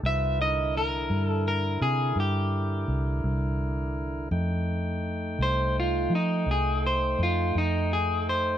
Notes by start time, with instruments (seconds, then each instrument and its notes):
0.03 fingered electric bass C2, tonewheel organ D#3 F4 B4, clean electric guitar E5
0.40 tonewheel organ D3 E4 A#4, clean electric guitar D#5
0.77 clean electric guitar A#4
1.10 fingered electric bass G2
1.27 clean electric guitar A4
1.48 clean electric guitar A#4
1.81 fingered electric bass C3, clean electric guitar G#4
2.16 fingered electric bass G2
2.20 clean electric guitar G4
2.88 fingered electric bass C2
3.24 fingered electric bass C2
4.31 fingered electric bass F2, tonewheel organ A3 D#4 G5
5.39 fingered electric bass C2, clean electric guitar C5
5.80 clean electric guitar F4
6.10 fingered electric bass F3
6.15 clean electric guitar D#4
6.46 fingered electric bass C2
6.51 clean electric guitar G#4
6.86 clean electric guitar C5
7.19 fingered electric bass F2
7.23 clean electric guitar F4
7.55 fingered electric bass F2, clean electric guitar D#4
7.93 clean electric guitar G#4
8.29 clean electric guitar C5